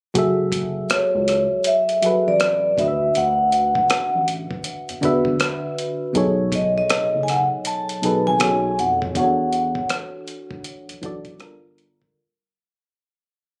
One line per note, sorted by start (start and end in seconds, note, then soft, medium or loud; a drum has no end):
0.14 0.81 F#1 medium
0.14 1.53 F#3 medium
0.14 1.54 F#4 medium
0.14 1.54 G#4 medium
0.14 1.55 A4 medium
0.14 kick loud
0.14 closed hi-hat medium
0.18 1.55 E5 medium
0.52 kick medium
0.52 closed hi-hat medium
0.90 1.01 C#2 soft
0.90 1.69 C#5 medium
0.90 cross-stick medium
0.90 closed hi-hat medium
1.15 1.47 C#2 medium
1.28 cross-stick soft
1.28 closed hi-hat medium
1.64 2.29 E5 medium
1.64 closed hi-hat medium
1.89 closed hi-hat soft
2.02 2.13 A1 soft
2.02 2.77 F#3 medium
2.02 2.78 F#4 medium
2.02 2.78 G#4 medium
2.02 2.79 A4 medium
2.02 closed hi-hat medium
2.06 2.79 B4 medium
2.27 2.72 A1 medium
2.27 2.75 D5 medium
2.40 cross-stick loud
2.40 closed hi-hat medium
2.77 3.11 D2 medium
2.77 4.16 D3 medium
2.77 4.16 D4 medium
2.77 4.17 F#4 medium
2.77 4.18 B4 medium
2.77 3.17 E5 medium
2.77 kick medium
2.77 closed hi-hat medium
2.81 2.88 D#5 medium
2.88 4.21 E5 medium
3.15 3.82 D2 medium
3.15 3.51 F#5 loud
3.15 closed hi-hat medium
3.52 4.24 F#5 medium
3.52 closed hi-hat medium
3.75 kick medium
3.90 4.01 A1 medium
3.90 cross-stick loud
3.90 closed hi-hat medium
4.15 4.47 A1 medium
4.28 closed hi-hat medium
4.51 kick medium
4.64 closed hi-hat medium
4.89 4.95 E2 soft
4.89 closed hi-hat soft
5.01 5.36 E2 medium
5.01 6.06 D3 medium
5.01 6.06 D4 medium
5.01 6.07 F#4 medium
5.01 6.07 B4 medium
5.01 kick medium
5.01 closed hi-hat medium
5.05 6.08 E5 medium
5.25 kick medium
5.40 cross-stick loud
5.40 closed hi-hat medium
5.78 closed hi-hat medium
6.13 6.81 B1 loud
6.13 7.53 B2 medium
6.13 7.53 F#3 medium
6.13 7.54 D#4 medium
6.13 7.54 G#4 medium
6.13 7.55 A4 medium
6.13 kick loud
6.13 closed hi-hat medium
6.18 7.55 C#5 medium
6.52 6.65 D#5 medium
6.52 kick medium
6.52 closed hi-hat medium
6.78 7.20 D#5 medium
6.90 7.01 F#1 soft
6.90 cross-stick loud
6.90 closed hi-hat medium
7.15 7.47 F#1 medium
7.23 7.28 G#5 medium
7.28 7.46 F#5 medium
7.28 cross-stick soft
7.28 closed hi-hat medium
7.65 8.28 A5 loud
7.65 closed hi-hat medium
7.89 closed hi-hat soft
8.02 8.14 G#1 soft
8.02 8.38 B2 medium
8.02 8.40 F#3 medium
8.02 8.41 D#4 medium
8.02 8.40 G#4 medium
8.02 8.41 A4 medium
8.02 closed hi-hat medium
8.06 8.42 B4 medium
8.27 8.40 G#1 medium
8.27 8.80 G#5 medium
8.39 8.81 B1 loud
8.39 9.09 B2 medium
8.39 8.49 C#4 soft
8.39 9.09 F#4 medium
8.39 9.10 G#4 medium
8.39 9.11 A4 medium
8.39 cross-stick loud
8.39 closed hi-hat medium
8.43 9.13 D#4 medium
8.43 9.11 C#5 medium
8.79 9.12 F2 medium
8.79 8.96 F#5 medium
8.79 closed hi-hat medium
9.02 kick medium
9.15 9.81 E2 loud
9.15 10.54 E3 medium
9.15 10.54 D4 medium
9.15 10.55 F#4 medium
9.15 9.24 G#4 soft
9.15 9.87 F#5 medium
9.15 kick loud
9.15 closed hi-hat medium
9.19 10.56 C#5 medium
9.24 10.58 A4 medium
9.53 closed hi-hat medium
9.75 kick medium
9.89 cross-stick loud
9.89 closed hi-hat medium
10.28 closed hi-hat medium
10.51 kick medium
10.64 closed hi-hat medium
10.89 10.95 B1 soft
10.89 closed hi-hat soft
11.02 11.43 B1 medium
11.02 11.40 E3 medium
11.02 11.39 D4 medium
11.02 11.41 F#4 medium
11.02 11.41 A4 medium
11.02 kick medium
11.02 closed hi-hat medium
11.06 11.42 D5 medium
11.25 kick medium
11.25 closed hi-hat soft
11.39 12.07 G1 medium
11.39 12.09 G3 medium
11.39 12.09 D4 medium
11.39 12.10 F4 medium
11.39 12.11 A4 medium
11.39 cross-stick loud
11.39 closed hi-hat medium
11.44 12.11 A#4 medium
11.78 closed hi-hat medium
12.02 kick medium